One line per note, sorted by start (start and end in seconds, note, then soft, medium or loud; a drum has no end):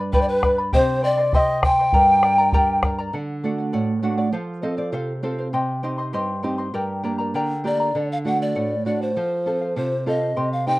0.00 0.71 G2 medium
0.00 0.12 B4 soft
0.00 0.13 D5 soft
0.00 0.13 B5 medium
0.13 0.43 G4 medium
0.13 0.23 B4 medium
0.13 0.42 B4 medium
0.13 0.23 B4 medium
0.13 0.42 D5 medium
0.13 0.42 G5 medium
0.13 0.43 B5 medium
0.13 bombo low medium
0.21 0.30 D5 medium
0.28 0.59 B4 medium
0.28 0.33 C5 medium
0.43 0.59 B4 medium
0.43 0.58 D5 medium
0.43 0.58 G5 medium
0.43 0.57 B5 medium
0.43 bombo rim medium
0.43 bombo low medium
0.58 0.73 B4 soft
0.58 0.73 D5 soft
0.58 0.73 B5 medium
0.73 1.90 C3 medium
0.73 1.03 G4 medium
0.73 1.01 C5 medium
0.73 1.02 C5 medium
0.73 1.03 C5 medium
0.73 1.02 D#5 medium
0.73 1.01 G5 medium
0.73 1.03 C6 medium
0.73 bombo low medium
1.02 1.18 C5 medium
1.02 1.36 D5 medium
1.02 1.37 D5 medium
1.02 1.18 D#5 medium
1.02 1.18 G5 medium
1.02 1.17 C6 medium
1.18 1.33 C5 soft
1.18 1.33 D#5 soft
1.18 1.33 C6 medium
1.33 1.63 G4 medium
1.33 1.62 C5 medium
1.33 1.63 D#5 medium
1.33 1.40 E5 medium
1.33 1.62 G5 medium
1.33 1.64 C6 medium
1.33 bombo low medium
1.39 1.64 D#5 medium
1.63 1.78 C5 medium
1.63 1.79 D#5 medium
1.63 1.78 G5 medium
1.63 2.79 G5 medium
1.63 1.72 G#5 medium
1.63 1.78 C6 medium
1.63 bombo rim medium
1.63 bombo low medium
1.71 2.81 G5 medium
1.79 1.93 C5 soft
1.79 1.94 D#5 soft
1.79 1.94 C6 soft
1.93 3.10 G2 medium
1.93 2.23 G4 medium
1.93 2.22 A#4 medium
1.93 2.23 D5 medium
1.93 2.22 G5 medium
1.93 2.23 A#5 medium
1.93 bombo low medium
2.23 2.38 A#4 medium
2.23 2.38 D5 medium
2.23 2.38 G5 medium
2.23 2.37 A#5 medium
2.23 bombo rim medium
2.38 2.53 A#4 soft
2.38 2.53 D5 medium
2.38 2.53 A#5 medium
2.53 2.83 G4 medium
2.53 2.83 A#4 medium
2.53 2.83 D5 loud
2.53 2.82 G5 medium
2.53 2.83 A#5 medium
2.53 bombo low medium
2.83 2.98 A#4 medium
2.83 2.98 D5 medium
2.83 2.98 G5 medium
2.83 2.97 A#5 medium
2.83 bombo rim medium
2.83 bombo low medium
2.98 3.13 A#4 soft
2.98 3.12 D5 medium
2.98 3.13 A#5 medium
3.13 3.71 D3 medium
3.13 3.42 A4 medium
3.13 3.43 D5 medium
3.13 3.44 F#5 medium
3.44 3.91 A3 soft
3.44 3.92 D4 soft
3.44 3.92 F#4 soft
3.44 3.58 A4 soft
3.44 3.59 D5 medium
3.44 3.57 F#5 medium
3.58 3.72 D5 soft
3.58 3.72 F#5 soft
3.73 4.32 A2 medium
3.73 4.01 A4 medium
3.73 4.02 D5 medium
3.73 4.03 F#5 medium
4.02 4.27 A3 soft
4.02 4.27 D4 soft
4.02 4.27 F#4 soft
4.02 4.18 A4 medium
4.02 4.18 D5 medium
4.02 4.17 F#5 medium
4.02 4.16 F#5 medium
4.18 4.32 D5 medium
4.18 4.33 D5 soft
4.18 4.33 F#5 medium
4.32 4.91 F3 medium
4.32 4.61 A4 medium
4.32 4.61 C5 medium
4.32 4.62 C5 medium
4.32 4.62 F5 medium
4.62 5.11 C4 soft
4.62 5.11 F4 soft
4.62 4.78 A4 medium
4.62 5.12 A4 soft
4.62 4.77 C5 medium
4.62 4.77 D#5 medium
4.62 4.76 F5 medium
4.77 4.92 C5 soft
4.77 4.92 D5 medium
4.77 4.93 F5 medium
4.92 5.51 C3 medium
4.92 5.22 A4 medium
4.92 5.21 C5 medium
4.92 5.23 C5 medium
4.92 5.24 F5 medium
5.23 5.47 C4 soft
5.23 5.48 F4 soft
5.23 5.39 A4 medium
5.23 5.48 A4 soft
5.23 5.51 C5 medium
5.23 5.38 C5 medium
5.23 5.37 F5 medium
5.38 5.53 C5 soft
5.38 5.53 F5 medium
5.53 6.12 C3 medium
5.53 5.83 G4 medium
5.53 5.82 C5 medium
5.53 5.82 D#5 medium
5.53 5.82 G5 medium
5.53 5.83 C6 medium
5.83 6.32 C4 soft
5.83 6.32 D#4 soft
5.83 6.32 G4 soft
5.83 5.98 C5 medium
5.83 5.97 D#5 medium
5.83 5.98 G5 medium
5.83 5.97 C6 medium
5.98 6.13 C5 soft
5.98 6.13 D#5 soft
5.98 6.13 C6 soft
6.13 6.72 G2 medium
6.13 6.44 G4 medium
6.13 6.42 C5 medium
6.13 6.43 D#5 medium
6.13 6.42 G5 medium
6.13 6.43 C6 medium
6.43 6.68 C4 soft
6.43 6.68 D#4 soft
6.43 6.68 G4 soft
6.43 6.58 C5 medium
6.43 6.58 D#5 medium
6.43 6.58 G5 soft
6.43 6.57 C6 medium
6.58 6.74 C5 soft
6.58 6.74 D#5 soft
6.58 6.74 C6 soft
6.74 7.33 G2 medium
6.74 7.04 G4 medium
6.74 7.02 A#4 medium
6.74 7.03 D5 medium
6.74 7.02 G5 medium
6.74 7.04 A#5 medium
7.03 7.52 A#3 soft
7.03 7.52 D4 soft
7.03 7.52 G4 soft
7.03 7.19 A#4 medium
7.03 7.18 D5 medium
7.03 7.19 G5 soft
7.03 7.17 A#5 medium
7.18 7.34 A#4 soft
7.18 7.34 D5 soft
7.18 7.34 A#5 medium
7.34 7.93 D3 medium
7.34 7.65 G4 medium
7.34 7.63 A#4 medium
7.34 7.64 D5 medium
7.34 7.63 G5 medium
7.34 7.65 A#5 medium
7.64 7.88 A#3 soft
7.64 7.89 D4 soft
7.64 7.89 G4 soft
7.64 7.80 A#4 medium
7.64 7.80 D5 medium
7.64 8.08 D5 medium
7.64 7.79 G5 medium
7.64 7.79 A#5 medium
7.80 7.95 A#4 soft
7.80 7.95 D5 soft
7.80 7.95 A#5 medium
7.95 8.53 D3 medium
7.95 8.24 A4 medium
7.95 8.24 D5 medium
7.95 8.25 F#5 medium
8.12 8.18 F5 medium
8.25 8.73 A3 soft
8.25 8.73 D4 soft
8.25 8.73 F#4 soft
8.25 8.40 A4 soft
8.25 8.40 D5 soft
8.25 8.39 F#5 soft
8.25 8.40 F#5 medium
8.40 8.55 D5 soft
8.40 8.83 D5 medium
8.40 8.55 F#5 soft
8.55 9.14 A2 medium
8.55 8.85 A4 medium
8.55 8.86 D5 medium
8.55 8.86 F#5 medium
8.85 9.09 A3 soft
8.85 9.10 D4 soft
8.85 9.10 F#4 soft
8.85 9.01 A4 soft
8.85 9.03 D5 medium
8.85 9.01 D5 soft
8.85 9.00 F#5 medium
9.01 9.76 C5 medium
9.01 9.16 D5 soft
9.01 9.16 F#5 soft
9.16 9.75 F3 medium
9.16 9.45 A4 medium
9.16 9.46 C5 medium
9.16 9.46 F5 medium
9.46 9.94 C4 soft
9.46 9.95 F4 soft
9.46 9.61 A4 soft
9.46 9.95 A4 soft
9.46 9.61 C5 soft
9.46 9.60 F5 medium
9.61 9.76 C5 soft
9.61 9.76 F5 soft
9.76 10.35 C3 medium
9.76 10.05 A4 medium
9.76 10.06 C5 medium
9.76 10.05 C5 medium
9.76 10.06 F5 medium
10.06 10.30 C4 soft
10.06 10.30 F4 soft
10.06 10.21 A4 soft
10.06 10.31 A4 soft
10.06 10.21 C5 medium
10.06 10.49 D#5 medium
10.06 10.20 F5 medium
10.21 10.35 C5 soft
10.21 10.36 F5 soft
10.36 10.79 C3 medium
10.36 10.67 G4 medium
10.36 10.66 C5 medium
10.36 10.66 D#5 medium
10.36 10.66 G5 medium
10.36 10.67 C6 medium
10.53 10.69 F5 medium
10.67 10.79 C4 soft
10.67 10.79 D#4 soft
10.67 10.79 G4 soft
10.67 10.79 C5 soft
10.67 10.79 D#5 medium
10.67 10.79 G5 soft
10.67 10.79 G5 medium
10.67 10.79 C6 medium